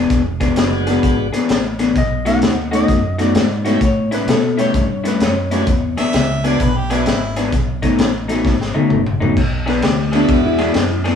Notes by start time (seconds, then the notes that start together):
Already playing: E3 B3 D4 G#4
0.10 E1, kick, snare, closed hi-hat
0.40 E3 B3 D4 G#4, kick, snare, closed hi-hat
0.56 F#1 G#3 B3 D4 F#4, snare, closed hi-hat
0.87 E3 B3 D4 G#4, snare, closed hi-hat
1.03 G#1, kick, snare, closed hi-hat
1.33 E3 B3 D4 G#4, muted fingered electric bass stroke, snare, closed hi-hat
1.49 A1, snare, closed hi-hat
1.79 E3 B3 D4 G#4, snare, closed hi-hat
1.96 B1 D#5, kick, snare, closed hi-hat
2.25 B2 A3 D#4 F#4 F#5, snare, closed hi-hat
2.42 D#2, snare, closed hi-hat
2.71 B2 A3 C#4 D#4 F#4 D#5, snare, closed hi-hat
2.88 F#2, kick, snare, closed hi-hat
3.18 B2 A3 D#4 F#4 D5, snare, closed hi-hat
3.35 G#2, snare, closed hi-hat
3.65 B2 A3 B3 C#4 D#4 E4 F#4 G4, snare, closed hi-hat
3.81 A2 C#5, kick, snare, closed hi-hat
4.11 A2 G3 C#4 E4 B4, snare, closed hi-hat
4.28 B2 A4, snare, closed hi-hat
4.57 A2 G3 B3 C#4 E4 G4 C#5, snare, closed hi-hat
4.74 G2, kick, snare, closed hi-hat
5.04 A2 G3 C#4 E4, snare, closed hi-hat
5.08 B4
5.20 F#2 C#5, snare, closed hi-hat
5.51 A2 G3 B3 C#4 D4 E4 F#4 G#4, snare, closed hi-hat
5.67 E2, kick, snare, closed hi-hat
5.97 E3 B3 D4 G#4 E5, muted fingered electric bass stroke, snare, closed hi-hat
6.13 C#2, snare, closed hi-hat
6.44 E3 B3 D4 F#4 G#4 D5, snare, closed hi-hat
6.60 B1 B4, kick, snare, closed hi-hat
6.77 G4
6.90 E3 B3 D4 E4 F#4 G#4, snare, closed hi-hat
7.06 G#1, snare, closed hi-hat
7.36 E3 B3 D4 G#4, snare, closed hi-hat
7.52 B1, kick, snare, closed hi-hat
7.82 B2 F#3 A3 D#4, kick, snare, closed hi-hat
7.99 A1, snare, closed hi-hat
8.28 B2 F#3 A3 D#4, snare, closed hi-hat
8.45 G#1, kick, snare
8.61 snare
8.74 B2 F#3 A3 D#4, high tom
8.90 F#1, mid tom
9.06 mid tom
9.20 B2 F#3 A3 D#4, floor tom
9.37 B1, kick, snare, crash
9.66 E3 B3 D4 G#4 B4, snare, ride
9.82 D2 G4, snare, ride
10.12 E3 G#3 B3 D4 E4 F#4 G#4, snare, ride
10.29 E2, kick, snare, ride
10.46 E4
10.58 E3 B3 D4 G#4, snare, ride
10.74 F#2, snare, ride
11.04 E3 B3 D4 G#4, snare, ride